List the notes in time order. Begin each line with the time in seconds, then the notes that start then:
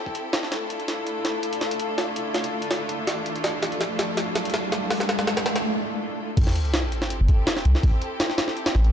Already playing: C4 E4 G4 A4
0.06 kick
0.15 closed hi-hat
0.33 snare, closed hi-hat
0.43 snare
0.51 A3 D4 F4, snare, closed hi-hat, riser
0.70 closed hi-hat
0.80 closed hi-hat
0.88 snare, closed hi-hat
1.07 closed hi-hat
1.25 snare, closed hi-hat
1.43 closed hi-hat
1.53 closed hi-hat
1.61 snare, closed hi-hat
1.71 closed hi-hat
1.80 closed hi-hat
1.98 snare, closed hi-hat
2.16 closed hi-hat
2.34 snare, closed hi-hat
2.44 closed hi-hat
2.62 closed hi-hat
2.71 snare, closed hi-hat
2.89 closed hi-hat
3.07 snare, closed hi-hat
3.26 closed hi-hat
3.36 closed hi-hat
3.44 snare, closed hi-hat
3.63 snare, closed hi-hat
3.72 closed hi-hat
3.81 snare, closed hi-hat
3.99 snare, closed hi-hat
4.17 snare, closed hi-hat
4.35 snare, closed hi-hat
4.45 closed hi-hat
4.50 closed hi-hat
4.54 snare, closed hi-hat
4.72 snare, closed hi-hat
4.90 snare, open hi-hat
5.00 snare
5.09 snare, closed hi-hat
5.19 snare, closed hi-hat
5.27 snare, closed hi-hat
5.37 snare, closed hi-hat
5.46 snare, closed hi-hat
5.56 snare, closed hi-hat
6.37 A1 C4 E4 G4 A4, kick, closed hi-hat, crash, sub drop
6.47 snare
6.56 closed hi-hat
6.65 closed hi-hat
6.74 snare, closed hi-hat
6.92 closed hi-hat
7.02 snare
7.10 closed hi-hat
7.20 G1
7.28 kick, closed hi-hat
7.47 snare, closed hi-hat
7.57 snare
7.65 C2, closed hi-hat
7.75 snare
7.83 A1, kick, open hi-hat
8.02 closed hi-hat
8.20 snare, closed hi-hat
8.30 snare
8.38 snare, closed hi-hat
8.48 snare
8.57 closed hi-hat
8.66 snare, closed hi-hat
8.75 A1, snare
8.84 closed hi-hat